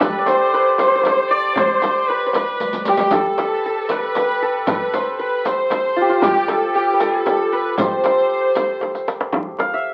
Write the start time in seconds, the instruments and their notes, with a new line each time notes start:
Already playing: santur G4 A4
0.00 violin section B4, santur B4, riq, frame drum, tombak dum
0.18 santur D5
0.26 santur C5, violin section C5, riq, tombak tek, frame drum
0.54 santur B4
0.78 violin section C5, santur C5, riq, tombak tek, frame drum
0.87 santur C5
0.95 santur C5
1.01 santur C5, riq, frame drum
1.07 santur C5, tombak tek
1.17 santur C5
1.31 violin section D5, santur D5
1.56 violin section C5, santur C5, riq, frame drum, tombak dum
1.82 riq, tombak tek, frame drum
2.07 violin section B4, santur B4
2.26 santur C5
2.33 violin section B4, santur B4, riq, tombak tek, frame drum
2.60 riq, tombak tek
2.73 riq, tombak ka
2.85 violin section G4, santur G4, riq, tombak tek
2.97 riq, tombak ka
3.11 violin section A4, santur A4, riq, frame drum, tombak dum
3.38 santur B4, riq, tombak tek, frame drum
3.66 santur A4
3.89 violin section B4, santur B4, riq, tombak tek, frame drum
4.15 riq, tombak tek, frame drum
4.42 santur A4
4.67 santur B4, violin section B4, riq, frame drum, tombak dum
4.93 santur C5, riq, tombak tek, frame drum
5.19 violin section B4, santur B4
5.45 violin section C5, santur C5, riq, tombak tek, frame drum
5.70 riq, tombak tek, frame drum
5.96 santur F4
6.01 santur G4
6.09 santur F4
6.22 santur G4, violin section G4, riq, frame drum, tombak dum
6.48 violin section A4, santur A4, riq, tombak tek, frame drum
6.75 violin section G4, santur G4
6.93 santur B4
7.00 santur A4, violin section A4, riq, tombak tek, frame drum
7.26 riq, tombak tek, frame drum
7.52 santur B4, violin section B4
7.78 santur C5, violin section C5, riq, frame drum, tombak dum
8.04 riq, tombak tek, frame drum
8.55 riq, tombak tek, frame drum
8.81 tombak tek, frame drum
8.95 riq, tombak ka
9.08 riq, tombak tek
9.21 tombak ka
9.33 frame drum, tombak dum
9.59 santur F5, tombak tek, frame drum
9.74 santur E5